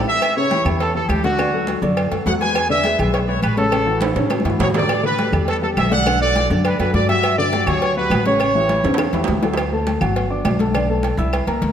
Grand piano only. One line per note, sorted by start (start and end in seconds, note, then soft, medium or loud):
0.37 0.49 C#3 medium
0.37 0.49 C#4 medium
0.37 0.49 C#5 medium
0.52 0.63 E3 medium
0.52 0.64 E4 medium
0.52 0.64 G4 medium
0.66 0.90 E3 medium
0.66 0.90 E4 medium
0.66 0.90 G4 medium
0.95 1.19 E3 medium
0.95 1.19 E4 medium
0.95 1.19 G4 medium
1.24 1.36 D3 medium
1.24 1.36 D4 medium
1.24 1.36 D5 medium
1.39 1.51 D3 medium
1.39 1.51 D4 medium
1.39 1.51 D5 medium
1.53 1.77 F#3 medium
1.53 1.78 F#4 medium
1.53 1.78 A4 medium
1.83 2.07 D3 medium
1.83 2.07 D4 medium
1.83 2.07 D5 medium
2.12 2.24 F#3 medium
2.12 2.24 F#4 medium
2.12 2.24 A4 medium
2.26 2.38 F#3 medium
2.26 2.38 F#4 medium
2.26 2.39 A4 medium
2.41 2.65 G#3 medium
2.41 2.65 G#4 medium
2.41 2.65 B4 medium
2.70 2.82 D3 medium
2.70 2.82 D4 medium
2.70 2.82 D5 medium
2.85 2.97 G#3 medium
2.85 2.97 G#4 medium
2.85 2.97 B4 medium
2.99 3.23 G#3 medium
2.99 3.24 G#4 medium
2.99 3.24 B4 medium
3.28 3.52 G#3 medium
3.28 3.52 G#4 medium
3.28 3.53 B4 medium
3.57 3.69 C#3 medium
3.57 3.70 C#4 medium
3.57 3.70 C#5 medium
3.72 3.84 C#3 medium
3.72 3.84 C#4 medium
3.72 3.85 C#5 medium
3.86 4.11 E3 medium
3.86 4.11 E4 medium
3.86 4.11 F#4 medium
4.16 4.40 C#3 medium
4.16 4.40 C#4 medium
4.16 4.40 C#5 medium
4.45 4.57 E3 medium
4.45 4.58 E4 medium
4.45 4.58 F#4 medium
4.59 4.72 E3 medium
4.59 4.72 E4 medium
4.59 4.72 F#4 medium
4.75 4.99 G3 medium
4.75 4.99 G4 medium
4.75 4.99 A4 medium
5.03 5.16 D3 medium
5.03 5.16 D4 medium
5.03 5.16 D5 medium
5.18 5.30 G3 medium
5.18 5.31 G4 medium
5.18 5.31 A4 medium
5.33 5.57 G3 medium
5.33 5.57 G4 medium
5.33 5.58 A4 medium
5.62 5.86 G3 medium
5.62 5.86 G4 medium
5.62 5.87 A4 medium
5.91 6.03 D3 medium
5.91 6.04 D4 medium
5.91 6.04 D5 medium
6.06 6.18 D3 medium
6.06 6.19 D4 medium
6.06 6.19 D5 medium
6.22 6.45 F#3 medium
6.22 6.45 F#4 medium
6.22 6.46 A4 medium
6.51 6.75 D3 medium
6.51 6.75 D4 medium
6.51 6.75 D5 medium
6.79 6.91 F#3 medium
6.79 6.92 F#4 medium
6.79 6.92 A4 medium
6.95 7.07 F#3 medium
6.95 7.07 F#4 medium
6.95 7.07 A4 medium
7.09 7.33 F#3 medium
7.09 7.33 F#4 medium
7.09 7.33 G4 medium
7.38 7.50 D3 medium
7.38 7.50 D4 medium
7.38 7.50 D5 medium
7.53 7.65 F#3 medium
7.53 7.65 F#4 medium
7.53 7.65 G4 medium
7.68 7.92 F#3 medium
7.68 7.92 F#4 medium
7.68 7.92 G4 medium
7.97 8.21 F#3 medium
7.97 8.21 F#4 medium
7.97 8.21 G4 medium
8.26 8.38 C#3 medium
8.26 8.38 C#4 medium
8.26 8.38 C#5 medium
8.41 8.53 C#3 medium
8.41 8.53 C#4 medium
8.55 8.79 E3 medium
8.55 8.79 E4 medium
8.55 8.79 G4 medium
8.85 9.08 C#3 medium
8.85 9.09 C#4 medium
8.85 9.09 C#5 medium
9.14 9.26 E3 medium
9.14 9.26 E4 medium
9.14 9.26 G4 medium
9.29 9.41 E3 medium
9.29 9.41 E4 medium
9.29 9.41 G4 medium
9.43 9.55 F#3 medium
9.43 9.55 F#4 medium
9.43 9.55 A4 medium
9.72 9.96 A3 medium
9.72 9.96 A4 medium
9.72 9.97 A5 medium
10.01 10.25 F#3 medium
10.01 10.25 F#4 medium
10.01 10.26 F#5 medium
10.30 10.54 D4 medium
10.30 10.54 D5 medium
10.30 10.54 D6 medium
10.60 10.72 A3 medium
10.60 10.72 A4 medium
10.60 10.72 A5 medium
10.75 10.86 D3 medium
10.75 10.87 D4 medium
10.75 10.87 D5 medium
10.89 11.13 A3 medium
10.89 11.13 A4 medium
10.89 11.13 A5 medium
11.18 11.42 E4 medium
11.18 11.42 E5 medium
11.18 11.42 E6 medium
11.47 11.71 A#3 medium
11.47 11.71 A#4 medium
11.47 11.72 A#5 medium